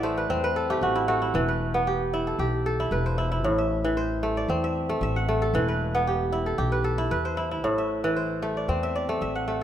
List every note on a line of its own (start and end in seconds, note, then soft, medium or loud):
0.00 0.25 A1 medium
0.00 1.39 A2 medium
0.00 1.33 E3 medium
0.00 0.70 A3 medium
0.00 0.69 E4 medium
0.00 0.29 C5 medium
0.00 1.02 D5 medium
0.00 0.81 E5 medium
0.00 0.62 F#5 medium
0.17 0.43 B4 medium
0.30 0.78 E2 medium
0.30 1.54 C4 medium
0.30 1.54 C5 medium
0.44 1.48 B4 medium
0.56 1.88 A4 medium
0.70 1.08 A3 medium
0.70 1.14 G4 medium
0.81 1.35 A1 medium
0.81 1.08 F#4 medium
0.96 1.21 E4 medium
1.08 3.08 A3 medium
1.08 1.93 F#4 medium
1.22 2.13 E4 medium
1.34 2.35 E1 medium
1.34 3.49 E3 medium
1.48 2.71 B4 medium
1.74 3.12 B3 medium
1.87 2.39 G4 medium
2.13 2.79 E4 medium
2.27 2.66 A4 medium
2.39 2.87 B1 medium
2.39 3.81 G4 medium
2.66 3.98 A4 medium
2.80 3.18 E4 medium
2.91 3.44 E1 medium
2.91 4.03 B4 medium
3.06 3.97 C5 medium
3.18 3.31 E4 medium
3.32 4.88 E4 medium
3.44 4.45 A1 medium
3.44 5.58 A2 medium
3.58 4.62 E5 medium
3.84 5.53 E3 medium
3.97 5.16 C5 medium
4.23 4.89 A3 medium
4.37 5.48 D5 medium
4.48 4.97 E2 medium
4.48 5.74 C4 medium
4.64 5.02 E5 medium
4.89 5.28 A3 medium
5.01 5.55 A1 medium
5.01 6.06 E5 medium
5.16 6.13 F#5 medium
5.29 7.28 A3 medium
5.42 6.46 A4 medium
5.54 6.54 E1 medium
5.54 7.68 E3 medium
5.68 6.72 B4 medium
5.95 7.31 B3 medium
6.07 6.58 G4 medium
6.32 6.98 E4 medium
6.46 6.84 A4 medium
6.58 7.07 B1 medium
6.58 7.99 G4 medium
6.72 7.11 B4 medium
6.84 8.16 A4 medium
6.98 7.37 E4 medium
7.11 7.64 E2 medium
7.11 8.22 B4 medium
7.25 8.16 C5 medium
7.37 7.51 E4 medium
7.51 9.08 E4 medium
7.64 8.64 A1 medium
7.64 9.63 A2 medium
7.78 8.82 E5 medium
8.04 9.63 E3 medium
8.16 9.35 C5 medium
8.42 9.09 A3 medium
8.57 8.95 D5 medium
8.68 9.17 E2 medium
8.68 9.63 C4 medium
8.83 9.21 E5 medium
8.96 9.63 D5 medium
9.09 9.47 A3 medium
9.21 9.63 A1 medium
9.21 9.63 E5 medium
9.35 9.63 F#5 medium
9.48 9.63 A3 medium